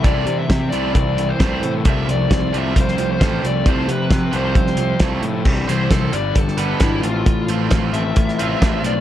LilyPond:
<<
  \new Staff \with { instrumentName = "Lead electric guitar" } { \time 4/4 \key f \lydian \tempo 4 = 133 d''8. e''8. d''8 d''8. c''16 c''8. r16 | e''8 d''4 e''8 c''8. c''8. d''8 | c''8 b'4 c''4. r4 | r8 c''8 a'8 d''8 a'8 a'8 e'8 f'8~ |
f'8 r4 e''2 d''8 | }
  \new Staff \with { instrumentName = "Distorted electric guitar" } { \time 4/4 \key f \lydian <c e a c'>4 c'8 e'8 c'8 e8 c'8 a8 | c4 c'8 f'8 c'8 f8 c'8 a8 | c4 c'8 f'8 c'8 f8 c'8 a8 | <c e g>8 <c e>8 <c e>8 <g b d'>8 <g d'>8 <g b d'>8 <g d'>8 <a, a c'>8 |
<a, a>8 <a, a>8 <a, a>8 <a, a c'>8 <a, a>8 <a, a c'>8 <a, a>8 <a, a>8 | }
  \new Staff \with { instrumentName = "Transistor combo organ" } { \time 4/4 \key f \lydian r1 | r1 | r1 | <g g'>2.~ <g g'>8 <a a'>8~ |
<a a'>1 | }
  \new Staff \with { instrumentName = "Transistor combo organ" } { \clef bass \time 4/4 \key f \lydian r1 | r1 | r1 | <c e e'>4. <b, d d'>2 <c f f'>8~ |
<c f f'>1 | }
  \new Staff \with { instrumentName = "Overdriven electric guitar" } { \clef bass \time 4/4 \key f \lydian <c e a>8 <c e>8 <c e>8 <c e a>8 <c e>8 <c e>8 <c e a>8 <c e>8 | <c f a>8 <c f>8 <c f>8 <c f a>8 <c f>8 <c f>8 <c f a>8 <c f>8 | <c f a>8 <c f>8 <c f>8 <c f a>8 <c f>8 <c f>8 <c f a>8 <c f>8 | r8 <g c' e' c''>8 <g c' e' c''>8 r4 <g b d' b'>8 <g b d' b'>8 r8 |
r8 <a c' f' c''>8 <a c' f' c''>8 r4 <a c' f' c''>8 <a c' f' c''>8 r8 | }
  \new Staff \with { instrumentName = "Picked electric bass" } { \clef bass \time 4/4 \key f \lydian c,8 c8 c8 c,8 c,4 c,8 a,8 | c,8 c,8 c,8 c,8 c,8 c,8 a,,8 c,8 | c,8 c8 c8 c,8 c,4 c,8 a,8 | c,8 c,8 c,8 g,,8 g,,4 aes,,8 a,,8 |
a,,8 a,,8 a,,8 a,,8 a,,4 a,,8 b,,8 | }
  \new DrumStaff \with { instrumentName = "Drums" } \drummode { \time 4/4 <hh bd>8 hh8 <hh bd sn>8 hh8 <hh bd>8 hh8 <hh bd sn>8 hh8 | <hh bd>8 hh8 <hh bd sn>8 hh8 <hh bd>16 sn16 hh8 <hh bd sn>8 hh8 | <hh bd>8 hh8 <hh bd sn>8 hh8 <hh bd>16 sn16 hh8 <hh bd sn>8 hh8 | <cymc bd>8 hh8 <hh bd sn>8 hh8 <hh bd>16 sn16 hh8 <hh bd sn>8 hh8 |
<hh bd>8 hh8 <hh bd sn>8 hh8 <hh bd>16 sn16 hh8 <hh bd sn>8 hh8 | }
>>